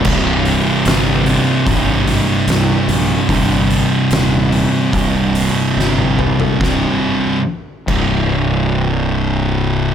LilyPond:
<<
  \new Staff \with { instrumentName = "Distorted electric guitar" } { \clef bass \time 4/4 \key des \lydian \tempo 4 = 72 <c, g, c>4. <c, g, c>2~ <c, g, c>8 | <c, g, c>4. <c, g, c>2~ <c, g, c>8 | <c, g, c>8 r4 <c, g, c>2~ <c, g, c>8 | }
  \new Staff \with { instrumentName = "Distorted electric guitar" } { \clef bass \time 4/4 \key des \lydian <c, g, c>2 <c, g, c>2 | <c, g, c>2 <c, g, c>2 | <c, g, c>8 r4 <c, g, c>2~ <c, g, c>8 | }
  \new Staff \with { instrumentName = "Fingered electric bass" } { \clef bass \time 4/4 \key des \lydian c,,4 g,,4 aes,,4 c,8 bes,,8 | g,,4 ees,,4 c,,4 g,,4 | c,,8 r4 c,,2~ c,,8 | }
  \new DrumStaff \with { instrumentName = "Drums" } \drummode { \time 4/4 <cymc bd>8 hho8 <hho sn>8 hho8 <hho bd>8 hho8 <hho sn>8 hho8 | <hho bd>8 hho8 <hho sn>8 hho8 <hho bd>8 hho8 sn16 tommh16 toml16 tomfh16 | <bd sn>4 r8 <cymc bd>8 r4 r4 | }
>>